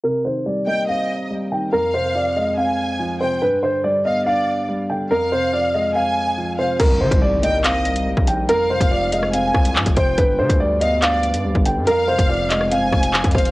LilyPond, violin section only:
\new Staff \with { instrumentName = "Violin section" } { \time 4/4 \key c \minor \tempo 4 = 142 r4. g''8 ees''4 r4 | f''2 aes''4. g''8 | r4. f''8 d''4 r4 | f''2 aes''4. f''8 |
r4. g''8 ees''4 r4 | f''2 aes''4. g''8 | r4. f''8 d''4 r4 | f''2 aes''4. f''8 | }